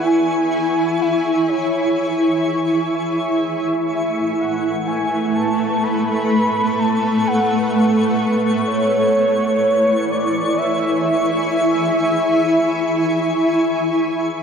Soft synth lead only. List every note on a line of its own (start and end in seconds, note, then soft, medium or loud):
0.05 1.03 G#5 loud
1.01 1.50 E5 loud
1.49 2.45 C#5 medium
2.94 4.42 E5 medium
4.40 4.87 F#5 loud
4.88 5.36 G#5 medium
5.35 5.85 A5 loud
5.83 6.81 B5 loud
6.79 7.29 A5 loud
7.27 8.22 F#5 loud
8.68 10.11 C#5 loud
10.09 10.59 D5 loud
10.58 11.05 E5 loud
11.05 13.46 E5 loud